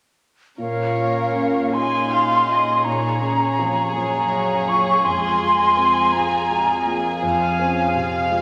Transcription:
0.58 2.81 A#2 soft
0.58 3.92 A#2 soft
0.58 2.81 C#4 soft
0.58 1.70 F4 soft
0.58 1.70 A#4 soft
0.58 1.70 C#5 soft
0.58 1.75 F5 medium
0.97 1.58 F4 soft
1.34 1.96 C#4 soft
1.73 2.84 D#4 soft
1.73 2.33 F4 soft
1.73 8.31 G#4 soft
1.73 2.12 G#5 soft
1.73 2.86 C6 medium
2.11 2.49 F#4 soft
2.11 2.49 F5 soft
2.48 3.08 F4 soft
2.48 2.86 D#5 soft
2.85 3.93 A#2 soft
2.85 3.22 D#4 soft
2.85 3.94 C#5 soft
2.85 3.96 A#5 medium
3.21 3.81 C#4 soft
3.21 3.59 C#4 soft
3.59 3.96 C3 soft
3.59 3.96 F3 soft
3.95 5.06 F#2 soft
3.95 5.06 A#3 soft
3.95 5.06 C#4 soft
3.95 4.54 F4 soft
3.95 5.04 C#5 soft
3.95 4.70 A#5 medium
4.32 4.69 F#4 soft
4.68 5.05 F4 soft
4.68 5.06 C#6 medium
5.04 7.18 F2 soft
5.04 8.42 F2 soft
5.04 6.12 G#3 soft
5.04 7.19 F4 soft
5.04 7.23 G#5 soft
5.04 6.14 C6 medium
5.41 5.99 F4 soft
5.77 6.35 C4 soft
6.13 6.50 C4 soft
6.13 6.72 F4 soft
6.13 6.95 A#5 medium
6.50 6.86 G#3 soft
6.50 6.87 F#4 soft
6.86 7.22 A#3 soft
6.86 7.45 F4 soft
7.22 8.42 F2 soft
7.22 7.59 C4 soft
7.22 8.42 F4 soft
7.22 8.42 F5 soft
7.22 8.27 G#5 medium
7.59 8.17 C4 soft
7.59 7.95 C#4 soft
7.95 8.42 C3 soft
7.95 8.31 C4 soft
8.31 8.42 G#3 soft
8.31 8.42 F4 soft
8.31 8.42 G#4 medium

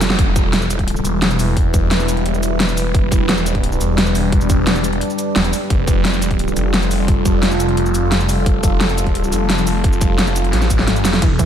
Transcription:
0.00 0.17 F1 medium
0.00 0.15 G3 medium
0.00 0.15 F4 medium
0.00 0.15 A4 medium
0.00 snare loud
0.00 open hi-hat medium
0.00 cabasa medium
0.10 snare medium
0.10 closed hi-hat soft
0.19 1.03 E1 loud
0.19 11.18 G3 medium
0.19 2.92 E4 medium
0.19 5.66 B4 medium
0.19 kick loud
0.19 closed hi-hat loud
0.36 kick loud
0.36 closed hi-hat medium
0.36 cabasa medium
0.53 snare loud
0.53 closed hi-hat loud
0.62 cabasa soft
0.70 closed hi-hat medium
0.70 cabasa medium
0.79 kick medium
0.79 closed hi-hat soft
0.88 closed hi-hat loud
0.96 cabasa soft
1.05 1.38 E1 loud
1.05 closed hi-hat medium
1.05 cabasa medium
1.22 snare loud
1.22 closed hi-hat medium
1.31 cabasa soft
1.39 1.72 E1 loud
1.39 open hi-hat medium
1.39 cabasa medium
1.57 kick loud
1.57 closed hi-hat loud
1.74 2.24 E1 loud
1.74 kick loud
1.74 closed hi-hat medium
1.74 cabasa medium
1.91 snare loud
1.91 closed hi-hat loud
2.00 snare soft
2.00 cabasa soft
2.08 closed hi-hat medium
2.08 cabasa medium
2.17 closed hi-hat soft
2.26 2.93 E1 loud
2.26 closed hi-hat loud
2.34 cabasa soft
2.43 closed hi-hat medium
2.43 cabasa medium
2.60 snare loud
2.60 closed hi-hat medium
2.69 cabasa soft
2.77 open hi-hat medium
2.77 cabasa medium
2.94 3.79 E1 loud
2.94 5.68 D4 medium
2.94 kick loud
2.94 closed hi-hat loud
3.12 kick loud
3.12 closed hi-hat medium
3.12 cabasa medium
3.29 snare loud
3.29 closed hi-hat loud
3.38 cabasa soft
3.46 closed hi-hat medium
3.46 cabasa medium
3.55 kick medium
3.55 closed hi-hat soft
3.64 closed hi-hat loud
3.72 cabasa soft
3.81 4.14 E1 loud
3.81 closed hi-hat medium
3.81 cabasa medium
3.98 snare loud
3.98 closed hi-hat medium
4.07 cabasa soft
4.15 4.48 E1 loud
4.15 open hi-hat medium
4.15 cabasa medium
4.32 kick loud
4.32 closed hi-hat loud
4.41 cabasa soft
4.50 5.00 E1 loud
4.50 kick loud
4.50 closed hi-hat medium
4.50 cabasa medium
4.67 snare loud
4.67 closed hi-hat medium
4.75 snare soft
4.75 cabasa soft
4.84 closed hi-hat medium
4.84 cabasa medium
4.93 closed hi-hat soft
5.01 closed hi-hat medium
5.10 cabasa soft
5.19 closed hi-hat medium
5.19 cabasa medium
5.36 5.52 E1 loud
5.36 snare loud
5.36 closed hi-hat medium
5.44 closed hi-hat soft
5.44 cabasa soft
5.53 open hi-hat medium
5.53 cabasa medium
5.70 6.55 F1 loud
5.70 11.18 F4 medium
5.70 11.18 A4 medium
5.70 kick loud
5.70 closed hi-hat medium
5.88 kick loud
5.88 closed hi-hat medium
5.88 cabasa medium
6.05 snare loud
6.05 closed hi-hat medium
6.13 cabasa soft
6.22 closed hi-hat medium
6.22 cabasa medium
6.31 kick medium
6.31 closed hi-hat soft
6.39 closed hi-hat medium
6.48 cabasa soft
6.56 6.90 F1 loud
6.56 closed hi-hat medium
6.56 cabasa medium
6.74 snare loud
6.74 closed hi-hat medium
6.82 cabasa soft
6.91 7.24 F1 loud
6.91 open hi-hat medium
6.91 cabasa medium
7.08 kick loud
7.08 closed hi-hat medium
7.25 7.76 F1 medium
7.25 kick loud
7.25 closed hi-hat medium
7.25 cabasa medium
7.43 snare loud
7.43 closed hi-hat medium
7.51 snare soft
7.51 cabasa soft
7.60 closed hi-hat medium
7.60 cabasa medium
7.69 closed hi-hat soft
7.77 8.45 F1 loud
7.77 closed hi-hat medium
7.86 cabasa soft
7.95 closed hi-hat medium
7.95 cabasa medium
8.12 snare loud
8.12 closed hi-hat medium
8.20 cabasa soft
8.29 open hi-hat medium
8.29 cabasa medium
8.46 9.31 F1 loud
8.46 kick loud
8.46 closed hi-hat loud
8.63 kick loud
8.63 closed hi-hat medium
8.63 cabasa medium
8.81 snare loud
8.81 closed hi-hat medium
8.89 cabasa soft
8.98 closed hi-hat medium
8.98 cabasa medium
9.07 kick medium
9.07 closed hi-hat soft
9.15 closed hi-hat medium
9.24 cabasa soft
9.32 9.65 F1 loud
9.32 closed hi-hat medium
9.32 cabasa medium
9.50 snare loud
9.50 closed hi-hat medium
9.58 cabasa soft
9.67 10.00 F1 loud
9.67 open hi-hat medium
9.67 cabasa medium
9.84 kick loud
9.84 closed hi-hat loud
9.93 cabasa soft
10.01 10.52 F1 loud
10.01 kick loud
10.01 closed hi-hat medium
10.01 cabasa medium
10.19 snare loud
10.19 closed hi-hat loud
10.27 snare soft
10.27 cabasa soft
10.36 closed hi-hat medium
10.36 cabasa medium
10.44 closed hi-hat soft
10.53 11.03 A1 loud
10.53 snare medium
10.53 closed hi-hat loud
10.62 snare medium
10.62 cabasa soft
10.70 kick medium
10.70 closed hi-hat medium
10.70 cabasa medium
10.79 snare medium
10.88 snare medium
10.88 closed hi-hat medium
10.96 closed hi-hat soft
10.96 cabasa soft
11.05 11.21 F1 loud
11.05 snare loud
11.05 open hi-hat medium
11.05 cabasa medium
11.13 snare medium
11.13 closed hi-hat soft
11.22 11.46 E1 loud
11.22 11.38 E3 medium
11.22 11.46 G3 medium
11.22 11.46 E4 medium
11.22 11.46 B4 medium
11.22 kick loud
11.22 closed hi-hat loud
11.22 ride medium
11.39 11.46 E3 medium
11.39 kick loud
11.39 closed hi-hat medium
11.39 cabasa medium

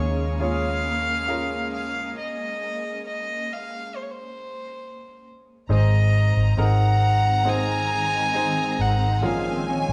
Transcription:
0.00 2.13 D#2 medium
0.00 2.18 C#3 medium
0.00 2.12 G#3 medium
0.00 2.13 A#3 medium
0.00 0.40 C#4 loud
0.00 2.13 C#4 medium
0.00 0.40 F4 medium
0.00 0.41 G#4 medium
0.00 2.13 G#4 medium
0.00 1.30 A#4 loud
0.00 0.37 C#5 medium
0.40 1.24 C#4 medium
0.40 1.24 F4 medium
0.40 1.24 G#4 medium
0.40 1.25 C#5 medium
0.40 1.69 F5 loud
1.28 2.12 C#4 medium
1.28 2.12 F4 medium
1.28 2.12 G#4 medium
1.28 2.13 A#4 medium
1.74 2.14 F5 medium
2.19 3.02 D#5 medium
3.08 3.54 D#5 medium
3.53 3.97 F5 medium
3.96 4.04 C5 medium
4.02 4.12 C#5 medium
4.10 5.27 C5 medium
5.69 6.32 G#1 loud
5.69 6.98 G#2 medium
5.69 6.98 D#3 medium
5.69 9.19 D#3 medium
5.69 9.93 G#3 medium
5.69 6.53 C4 medium
5.69 9.19 C4 medium
5.69 6.53 D#4 medium
5.69 6.54 G#4 medium
5.69 6.54 C5 medium
5.69 6.55 D#5 medium
5.69 9.19 A#5 loud
6.37 6.57 G#1 loud
6.57 8.75 G#1 loud
6.57 7.41 C4 medium
6.57 7.42 D#4 medium
6.57 7.42 G#4 medium
6.57 7.42 A#4 medium
6.57 7.50 F#5 loud
7.45 8.29 C4 medium
7.45 8.29 D#4 medium
7.45 8.30 G#4 medium
7.45 8.30 C5 medium
7.45 8.83 G#5 loud
8.33 9.18 C4 medium
8.33 9.18 D#4 medium
8.33 9.18 G#4 medium
8.33 9.18 C5 medium
8.79 9.23 G#1 medium
8.79 9.27 F#5 loud
9.22 9.85 A#1 medium
9.22 9.93 A#2 medium
9.22 9.93 C#3 medium
9.22 9.93 F3 medium
9.22 9.93 A#3 medium
9.22 9.93 C#4 medium
9.22 9.93 F4 medium
9.22 9.93 G#4 medium
9.22 9.93 A#4 medium
9.22 9.71 F5 medium
9.22 9.93 G#5 loud
9.69 9.93 C#5 medium
9.89 9.93 A#1 medium

